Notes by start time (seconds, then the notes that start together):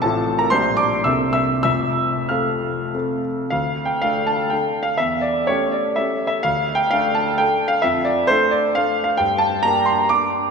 0.02 A1 A2 A3 C4 F4 A4 A5
0.39 A#4 A#5
0.50 A#1 A#2 G3 D4 A#4 C5 C6
0.77 D5 D6
1.04 C2 C3 A#3 D4 A4 E5 E6
1.33 E5 E6
1.63 F1 F2 E5 E6
2.29 A3 C4 A4 F5 F6
2.94 A3 C4 A4
3.50 D2 F5
3.85 G5
4.02 A3 D4 A4 F5
4.27 A5
4.50 A3 D4 A4 G5
4.83 F5
4.98 E2 E5
5.21 D5
5.47 A3 C#4 G4 C#5
5.72 D5
5.96 A3 C#4 G4 E5
6.27 E5
6.43 D2 F5
6.75 G5
6.91 A3 D4 A4 F5
7.15 A5
7.38 A3 D4 A4 G5
7.68 F5
7.82 F2 E5
8.05 D5
8.27 A3 D4 A4 C5
8.51 D5
8.75 A3 D4 A4 F5
9.04 F5
9.17 G2 G5
9.38 A5
9.63 A#3 D4 G4 A#5
9.85 C6
10.09 A#3 D4 G4 D6